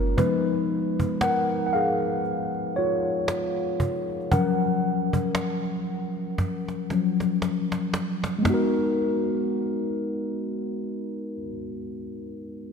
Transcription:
Already playing: 808-style bass F#1, tine electric piano G#3 A#3 C#4 F4 A#4
0.07 cajon slap
0.17 tine electric piano F3 G#3 B3 D#4 B4, cajon bass
0.48 cajon slap
1.00 cajon bass
1.21 tine electric piano A#4 F#5, cajon slap
1.51 cajon slap
1.66 tine electric piano F#5
1.73 tine electric piano G#4 F5, cajon slap
2.03 cajon slap
2.25 cajon slap
2.55 cajon slap
2.76 tine electric piano F4 C#5, cajon slap
3.28 cajon slap
3.58 cajon slap
3.80 cajon bass
3.95 cajon slap
4.10 cajon slap
4.21 cajon slap
4.32 tine electric piano F3 F#3 C#4 A#4 F#5, cajon bass
4.62 cajon slap
5.13 cajon bass
5.35 cajon slap
5.65 cajon slap
5.87 cajon slap
6.17 cajon slap
6.38 cajon bass, cajon slap
6.68 cajon slap
6.90 tine electric piano F3 F#3 C#4, cajon slap
7.20 cajon slap
7.42 cajon slap
7.72 cajon slap
7.94 cajon slap
8.24 cajon slap
8.38 tine electric piano G#3 B3
8.45 tine electric piano D#4, cajon bass, cajon slap
8.50 tine electric piano F#4 A#4

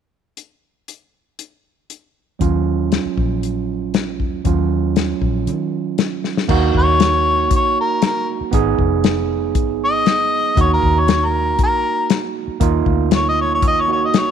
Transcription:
0.37 closed hi-hat
0.88 closed hi-hat
1.39 closed hi-hat
1.90 closed hi-hat
2.39 fingered electric bass D#2, tine electric piano F#3 C#4 F4, kick, closed hi-hat
2.92 snare, closed hi-hat
3.05 muted fingered electric bass stroke
3.17 fingered electric bass A#1, kick
3.43 closed hi-hat
3.94 snare, closed hi-hat
4.20 fingered electric bass D#2, kick
4.45 fingered electric bass D#2, tine electric piano F#3 C#4 F4, kick, closed hi-hat
4.96 snare, closed hi-hat
5.21 fingered electric bass A#1, kick
5.47 fingered electric bass D#3, closed hi-hat
5.98 snare, closed hi-hat
6.24 snare
6.37 snare
6.48 fingered electric bass D#2, tine electric piano A#3 D#4 F#4, kick, crash
6.75 fingered electric bass D#2, harmonica C#5, kick
7.00 snare, closed hi-hat
7.51 fingered electric bass A#1, kick, closed hi-hat
7.56 harmonica C#5
7.81 harmonica A#4
8.02 snare, closed hi-hat
8.06 harmonica A#4
8.41 muted fingered electric bass stroke
8.51 fingered electric bass G#1, tine electric piano B3 D#4 G#4, kick, closed hi-hat
8.78 fingered electric bass F1, kick
9.04 snare, closed hi-hat
9.55 fingered electric bass G#1, kick, closed hi-hat
9.85 harmonica D#5
10.06 snare, closed hi-hat
10.55 fingered electric bass D#2, tine electric piano A#3 D#4 F#4, kick, closed hi-hat
10.61 harmonica C#5
10.73 harmonica A#4
10.82 fingered electric bass D#2, kick
10.99 harmonica C#5
11.08 snare, closed hi-hat
11.25 harmonica A#4
11.59 fingered electric bass A#1, kick, closed hi-hat
11.63 harmonica A#4
12.10 snare, closed hi-hat
12.48 muted fingered electric bass stroke
12.60 fingered electric bass D#2, tine electric piano A#3 D#4 F4, kick, closed hi-hat
12.86 fingered electric bass D2, kick
13.11 snare, closed hi-hat
13.16 harmonica C#5
13.29 harmonica D#5
13.41 harmonica C#5
13.55 harmonica C#5
13.62 fingered electric bass D#2, kick, closed hi-hat
13.67 harmonica D#5
13.80 harmonica C#5
13.88 tine electric piano A#3 D#4 F#4
13.92 harmonica C#5
14.06 harmonica D#5
14.14 snare, closed hi-hat
14.19 harmonica C#5

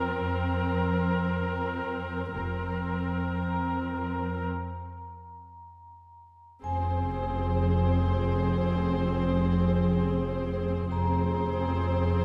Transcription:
Already playing: cello section F2, viola section C4 A#4, vibraphone G5
0.20 marimba F2
0.74 marimba F2
1.27 marimba F2
2.35 double bass section F1, marimba F2, cello section F2, viola section C4 A#4
2.89 marimba F2
3.42 marimba F3, vibraphone A#5
3.96 marimba F2
6.63 double bass section F1, marimba F2, cello section F2, viola section C4 G#4, violin section C5, vibraphone G#5
7.17 marimba F2
7.71 marimba F2
8.25 marimba F2
8.78 marimba F2
9.31 marimba F2
9.85 marimba F3
10.39 marimba F2
10.92 double bass section F1, cello section F2, marimba F2, viola section C4 G#4, violin section C5, vibraphone A#5
11.46 marimba F2
11.99 marimba F2

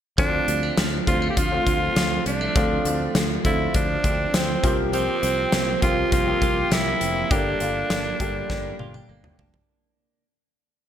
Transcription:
0.18 fingered electric bass D2, grand piano D3 A3 C4 F4, clean electric guitar F3 C4, tenor saxophone D4, kick, closed hi-hat
0.48 fingered electric bass D2, clean electric guitar G3, closed hi-hat
0.63 clean electric guitar A3
0.77 fingered electric bass D2, clean electric guitar F3, snare, closed hi-hat
1.07 fingered electric bass D2, grand piano D3 A3 C4 F4, clean electric guitar G3, tenor saxophone F4, kick, closed hi-hat
1.22 clean electric guitar A3
1.30 tenor saxophone G4
1.37 fingered electric bass D2, clean electric guitar F3, tenor saxophone F4, kick, closed hi-hat
1.51 grand piano D3 A3 C4 F4
1.67 fingered electric bass D2, clean electric guitar C4, kick, closed hi-hat
1.96 fingered electric bass D2, clean electric guitar F3, snare, closed hi-hat
2.26 fingered electric bass C2, clean electric guitar G3, tenor saxophone D4, closed hi-hat
2.41 clean electric guitar A3
2.55 fingered electric bass D2, grand piano D3 A3 C4 F4, clean electric guitar F3 C4, kick, closed hi-hat
2.85 fingered electric bass D2, grand piano D3 A3 C4 F4, clean electric guitar A3, closed hi-hat
3.15 fingered electric bass D2, clean electric guitar F3, snare, closed hi-hat
3.44 fingered electric bass D2, grand piano D3 A3 C4 F4, clean electric guitar A3, tenor saxophone E4, kick, closed hi-hat
3.74 fingered electric bass D2, clean electric guitar F3, tenor saxophone D4, kick, closed hi-hat
4.04 fingered electric bass D2, clean electric guitar C4, kick, closed hi-hat
4.34 fingered electric bass D2, clean electric guitar F3, tenor saxophone C4, snare, closed hi-hat
4.63 fingered electric bass C2, grand piano F3 A#3 C4 G4, clean electric guitar F3, kick, closed hi-hat
4.93 clean electric guitar F3 G4, tenor saxophone C4, closed hi-hat
5.23 fingered electric bass C2, clean electric guitar C4, closed hi-hat
5.52 fingered electric bass C2, clean electric guitar A#3, snare, closed hi-hat
5.82 fingered electric bass C2, grand piano F3 A#3 C4 G4, clean electric guitar C4, tenor saxophone F4, kick, closed hi-hat
6.12 fingered electric bass C2, clean electric guitar A#3, tenor saxophone F4, kick, closed hi-hat
6.27 grand piano F3 A#3 C4 G4
6.42 fingered electric bass C2, clean electric guitar G4, kick, closed hi-hat
6.71 fingered electric bass C2, clean electric guitar A#3, tenor saxophone E4, snare, closed hi-hat
7.01 fingered electric bass F1, clean electric guitar C4, closed hi-hat
7.30 fingered electric bass G1, grand piano D3 G3 A#3 G4, clean electric guitar A#3 G4, tenor saxophone D4, kick, closed hi-hat
7.60 fingered electric bass G1, grand piano D3 G3 A#3 F4, clean electric guitar D4, closed hi-hat
7.90 fingered electric bass G1, clean electric guitar A#3, snare, closed hi-hat
8.20 fingered electric bass G1, grand piano D3 G3 A#3 G4, clean electric guitar D4, kick, closed hi-hat
8.50 fingered electric bass G1, clean electric guitar A#3, kick, snare
8.79 fingered electric bass G1, clean electric guitar F4, high tom
8.94 clean electric guitar G4, high tom
9.09 fingered electric bass G1, clean electric guitar A#3
9.24 mid tom
9.39 fingered electric bass F1, clean electric guitar D4, floor tom
9.54 floor tom

